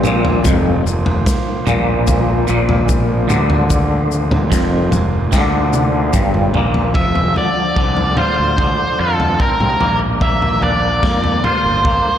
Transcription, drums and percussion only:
0.04 mid tom, shaker
0.25 floor tom
0.45 kick, floor tom, shaker
0.87 shaker
1.06 floor tom
1.26 kick, snare, shaker
1.67 floor tom, mid tom, shaker
2.07 kick, floor tom, shaker
2.48 shaker
2.69 floor tom
2.89 kick, mid tom, shaker
3.29 mid tom, shaker
3.50 floor tom
3.70 kick, floor tom, shaker
4.12 shaker
4.31 floor tom, mid tom
4.52 kick, snare, shaker
4.92 floor tom, mid tom, shaker
5.32 kick, snare, shaker
5.73 high tom, shaker
6.13 kick, mid tom, shaker
6.34 mid tom
6.54 floor tom
6.74 floor tom
6.94 kick, floor tom
7.15 floor tom
7.36 floor tom
7.76 kick
7.97 floor tom
8.17 floor tom, mid tom
8.58 kick, floor tom
9.20 floor tom
9.40 kick
9.60 mid tom
9.81 floor tom, mid tom
10.21 kick, floor tom
10.42 floor tom
10.62 floor tom
11.03 kick, snare
11.24 floor tom
11.44 floor tom, mid tom
11.85 kick, floor tom

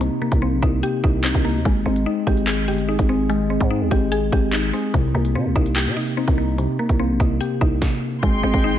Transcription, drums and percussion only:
0.01 closed hi-hat
0.32 kick, closed hi-hat
0.62 kick, closed hi-hat
0.83 closed hi-hat
1.04 kick
1.24 clap, closed hi-hat
1.35 kick, closed hi-hat
1.45 closed hi-hat
1.65 kick, closed hi-hat
1.96 closed hi-hat
2.27 kick, closed hi-hat
2.37 closed hi-hat
2.47 clap
2.68 closed hi-hat
2.78 closed hi-hat
2.99 kick, closed hi-hat
3.30 closed hi-hat
3.61 kick, closed hi-hat
3.91 kick, closed hi-hat
4.12 closed hi-hat
4.32 kick
4.53 clap, closed hi-hat
4.63 closed hi-hat
4.74 closed hi-hat
4.94 kick, closed hi-hat
5.25 closed hi-hat
5.56 kick, closed hi-hat
5.66 closed hi-hat
5.76 clap
5.97 closed hi-hat
6.07 closed hi-hat
6.28 kick, closed hi-hat
6.58 closed hi-hat
6.89 kick, closed hi-hat
7.20 kick, closed hi-hat
7.41 closed hi-hat
7.61 kick
7.82 kick, snare
8.23 kick, closed hi-hat
8.54 kick, closed hi-hat

